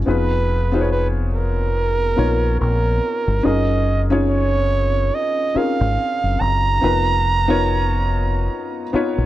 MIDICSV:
0, 0, Header, 1, 5, 480
1, 0, Start_track
1, 0, Tempo, 845070
1, 34, Time_signature, 4, 2, 24, 8
1, 5259, End_track
2, 0, Start_track
2, 0, Title_t, "Flugelhorn"
2, 0, Program_c, 0, 56
2, 42, Note_on_c, 0, 71, 98
2, 495, Note_off_c, 0, 71, 0
2, 522, Note_on_c, 0, 71, 84
2, 613, Note_off_c, 0, 71, 0
2, 764, Note_on_c, 0, 70, 99
2, 1456, Note_off_c, 0, 70, 0
2, 1479, Note_on_c, 0, 70, 99
2, 1960, Note_on_c, 0, 75, 102
2, 1968, Note_off_c, 0, 70, 0
2, 2298, Note_off_c, 0, 75, 0
2, 2443, Note_on_c, 0, 73, 106
2, 2923, Note_on_c, 0, 75, 98
2, 2932, Note_off_c, 0, 73, 0
2, 3164, Note_on_c, 0, 77, 105
2, 3172, Note_off_c, 0, 75, 0
2, 3638, Note_on_c, 0, 82, 118
2, 3647, Note_off_c, 0, 77, 0
2, 5259, Note_off_c, 0, 82, 0
2, 5259, End_track
3, 0, Start_track
3, 0, Title_t, "Upright piano"
3, 0, Program_c, 1, 0
3, 0, Control_c, 1, 64, 127
3, 33, Note_on_c, 1, 59, 72
3, 37, Note_on_c, 1, 63, 64
3, 41, Control_c, 1, 64, 0
3, 41, Note_on_c, 1, 65, 63
3, 45, Note_on_c, 1, 68, 62
3, 47, Note_on_c, 1, 71, 77
3, 141, Control_c, 1, 64, 127
3, 380, Note_off_c, 1, 59, 0
3, 381, Note_off_c, 1, 63, 0
3, 383, Note_off_c, 1, 65, 0
3, 385, Note_off_c, 1, 68, 0
3, 387, Note_off_c, 1, 71, 0
3, 408, Note_on_c, 1, 59, 78
3, 413, Note_on_c, 1, 63, 65
3, 417, Note_on_c, 1, 65, 69
3, 420, Note_on_c, 1, 68, 66
3, 425, Note_on_c, 1, 72, 66
3, 450, Note_off_c, 1, 72, 0
3, 461, Note_on_c, 1, 73, 76
3, 1174, Note_off_c, 1, 59, 0
3, 1176, Note_off_c, 1, 63, 0
3, 1178, Note_off_c, 1, 65, 0
3, 1180, Note_off_c, 1, 68, 0
3, 1200, Note_off_c, 1, 73, 0
3, 1227, Note_on_c, 1, 59, 67
3, 1232, Note_on_c, 1, 63, 62
3, 1235, Note_on_c, 1, 65, 65
3, 1238, Note_on_c, 1, 70, 64
3, 1243, Note_on_c, 1, 73, 79
3, 1902, Note_off_c, 1, 59, 0
3, 1904, Note_off_c, 1, 63, 0
3, 1905, Note_off_c, 1, 65, 0
3, 1907, Note_off_c, 1, 70, 0
3, 1910, Note_off_c, 1, 73, 0
3, 1948, Note_on_c, 1, 61, 76
3, 1952, Note_on_c, 1, 63, 61
3, 1958, Note_on_c, 1, 65, 61
3, 1960, Control_c, 1, 64, 0
3, 1960, Note_on_c, 1, 68, 68
3, 1966, Note_on_c, 1, 70, 79
3, 2049, Control_c, 1, 64, 127
3, 2297, Note_off_c, 1, 61, 0
3, 2299, Note_off_c, 1, 63, 0
3, 2302, Note_off_c, 1, 65, 0
3, 2303, Note_off_c, 1, 68, 0
3, 2306, Note_off_c, 1, 70, 0
3, 2329, Note_on_c, 1, 61, 76
3, 2333, Note_on_c, 1, 63, 72
3, 2336, Note_on_c, 1, 65, 64
3, 2340, Note_on_c, 1, 68, 65
3, 2343, Note_on_c, 1, 73, 81
3, 3094, Note_off_c, 1, 61, 0
3, 3096, Note_off_c, 1, 63, 0
3, 3097, Note_off_c, 1, 65, 0
3, 3100, Note_off_c, 1, 68, 0
3, 3101, Note_off_c, 1, 73, 0
3, 3150, Note_on_c, 1, 61, 67
3, 3153, Note_on_c, 1, 63, 61
3, 3158, Note_on_c, 1, 65, 62
3, 3160, Note_on_c, 1, 68, 63
3, 3165, Note_on_c, 1, 70, 76
3, 3823, Note_off_c, 1, 61, 0
3, 3825, Note_off_c, 1, 63, 0
3, 3827, Note_off_c, 1, 65, 0
3, 3828, Note_off_c, 1, 68, 0
3, 3830, Note_off_c, 1, 70, 0
3, 3868, Note_on_c, 1, 59, 71
3, 3872, Note_on_c, 1, 63, 66
3, 3877, Note_on_c, 1, 65, 62
3, 3880, Note_on_c, 1, 70, 65
3, 3881, Control_c, 1, 64, 0
3, 3883, Note_on_c, 1, 71, 78
3, 3972, Control_c, 1, 64, 127
3, 4217, Note_off_c, 1, 59, 0
3, 4219, Note_off_c, 1, 63, 0
3, 4222, Note_off_c, 1, 65, 0
3, 4223, Note_off_c, 1, 70, 0
3, 4225, Note_off_c, 1, 71, 0
3, 4248, Note_on_c, 1, 59, 91
3, 4250, Note_on_c, 1, 63, 82
3, 4254, Note_on_c, 1, 65, 79
3, 4260, Note_on_c, 1, 70, 80
3, 4262, Note_on_c, 1, 73, 96
3, 5013, Note_off_c, 1, 59, 0
3, 5015, Note_off_c, 1, 63, 0
3, 5016, Note_off_c, 1, 65, 0
3, 5020, Note_off_c, 1, 70, 0
3, 5020, Note_off_c, 1, 73, 0
3, 5072, Note_on_c, 1, 59, 85
3, 5076, Note_on_c, 1, 63, 73
3, 5078, Note_on_c, 1, 65, 76
3, 5084, Note_on_c, 1, 71, 80
3, 5087, Note_on_c, 1, 73, 86
3, 5259, Note_off_c, 1, 59, 0
3, 5259, Note_off_c, 1, 63, 0
3, 5259, Note_off_c, 1, 65, 0
3, 5259, Note_off_c, 1, 71, 0
3, 5259, Note_off_c, 1, 73, 0
3, 5259, End_track
4, 0, Start_track
4, 0, Title_t, "Fingered electric bass"
4, 0, Program_c, 2, 33
4, 40, Note_on_c, 2, 29, 85
4, 1214, Note_off_c, 2, 29, 0
4, 1241, Note_on_c, 2, 34, 97
4, 1456, Note_off_c, 2, 34, 0
4, 1483, Note_on_c, 2, 34, 90
4, 1698, Note_off_c, 2, 34, 0
4, 1861, Note_on_c, 2, 31, 85
4, 1948, Note_off_c, 2, 31, 0
4, 1958, Note_on_c, 2, 30, 91
4, 2893, Note_off_c, 2, 30, 0
4, 3300, Note_on_c, 2, 32, 94
4, 3388, Note_off_c, 2, 32, 0
4, 3542, Note_on_c, 2, 30, 84
4, 3629, Note_off_c, 2, 30, 0
4, 3639, Note_on_c, 2, 30, 90
4, 3855, Note_off_c, 2, 30, 0
4, 3879, Note_on_c, 2, 29, 99
4, 4814, Note_off_c, 2, 29, 0
4, 5216, Note_on_c, 2, 34, 80
4, 5259, Note_off_c, 2, 34, 0
4, 5259, End_track
5, 0, Start_track
5, 0, Title_t, "Muted fingered electric bass strokes"
5, 3155, Note_on_c, 9, 29, 48
5, 3212, Note_off_c, 9, 29, 0
5, 5077, Note_on_c, 9, 29, 46
5, 5133, Note_off_c, 9, 29, 0
5, 5259, End_track
0, 0, End_of_file